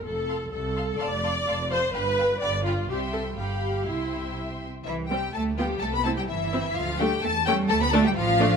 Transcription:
X:1
M:2/4
L:1/16
Q:1/4=127
K:F
V:1 name="Violin section"
z2 c'2 z2 c'2 | [K:C] c'2 c'2 c'2 c'2 | b2 b2 b2 b2 | c'4 b4 |
c'6 z2 | e2 g2 a2 g2 | a b a g e4 | f2 g2 a2 g2 |
a b a g f4 |]
V:2 name="Violin section"
z2 [fa]2 z2 [fa]2 | [K:C] [fa]2 [fa]2 [fa]2 [fa]2 | [fg]2 [fg]2 [fg]2 [fg]2 | [eg]4 [fg]4 |
[eg]6 z2 | E2 G2 A2 G2 | A B A G E4 | F2 G2 A2 G2 |
A B A G F4 |]
V:3 name="Viola section"
A4 A4 | [K:C] d6 c2 | B4 d2 F2 | G2 A2 G4 |
E4 z4 | z2 [G,C] z3 [B,F] z | z2 [CE] z3 [CE] z | z2 [A,D] z3 [A,^C] z |
z2 [A,D] z3 [A,D] z |]
V:4 name="Cello section" clef=bass
F,,4 C,,4 | [K:C] F,,4 F,,4 | G,,4 G,,4 | C,4 G,,4 |
C,6 z2 | E,2 G,2 A,2 G,2 | A, B, A, G, E,4 | F,2 G,2 A,2 G,2 |
A, B, A, G, F,4 |]
V:5 name="Double bass section" clef=bass
F,,,4 C,,4 | [K:C] F,,,4 F,,,4 | G,,,4 G,,,4 | C,,4 G,,,4 |
C,,6 z2 | C,,4 D,,4 | C,,4 G,,,4 | D,,4 E,,4 |
D,,4 A,,,4 |]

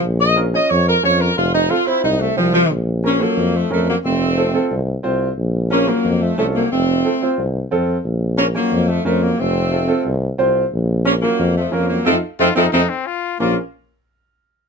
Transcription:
X:1
M:4/4
L:1/8
Q:1/4=180
K:Bbm
V:1 name="Upright piano"
z2 [DFB] [DFd] z2 [DFd] z | z2 [CF=A] [CFc] z2 [CFc] z | z2 [DFB] [DF=A] z2 [DFB] z | z2 [CF=A] [CFA] z2 [CFc] z |
z2 [DFB] [DFB] z2 [DF=A] z | z2 [CF=A] [CFc] z2 [CFA] z | z2 [DFB] [DFd] z2 [DFB] z | z2 [CF=A] [CFA] z2 [CFc] z |
z2 [DFB] [DFB] z2 [DFB] z | [EF=A] z [EFA] [EFA] [EFA] z3 | [DFB] z6 z |]
V:2 name="Trumpet"
z8 | z8 | z8 | z8 |
z8 | z8 | z8 | z8 |
z8 | z2 F E E C F2 | F z6 z |]
V:3 name="Saxophone section"
z e z e d B d B | F E F =E _E =A, F, F, | z2 [B,D] [G,B,]2 [F,=A,] [F,A,] [G,B,] | [=A,C]4 z4 |
z2 [B,D] [G,B,]2 [F,=A,] [F,A,] [G,B,] | [=A,C]4 z4 | z2 [B,D] [G,B,]2 [F,=A,] [F,A,] [G,B,] | [=A,C]4 z4 |
z2 [B,D] [G,B,]2 [F,=A,] [F,B,] [G,B,] | [F,=A,C] z [F,A,C] [F,A,C] [F,A,C] z3 | B, z6 z |]
V:4 name="Tuba" clef=bass
B,,,4 F,,2 F,,2 | F,,,2 z2 C,,2 C,,2 | B,,,4 F,,2 F,,2 | F,,,4 C,,2 C,,2 |
B,,,4 F,,2 C,,2 | F,,,2 z2 C,,2 F,,2 | B,,,4 F,,2 F,,2 | F,,,4 C,,2 C,,2 |
B,,,4 F,,2 F,,2 | F,, z F,, F,, F,, z3 | B,,, z6 z |]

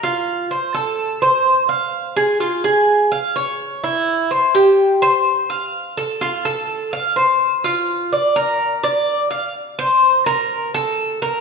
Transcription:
X:1
M:4/4
L:1/8
Q:1/4=126
K:Bb
V:1 name="Cuban tres"
F2 c A2 c2 f- | f _A F A2 f _d2 | =E2 c G2 c2 f- | f A F A2 f c2 |
F2 d B2 d2 f | z c2 B2 A2 B |]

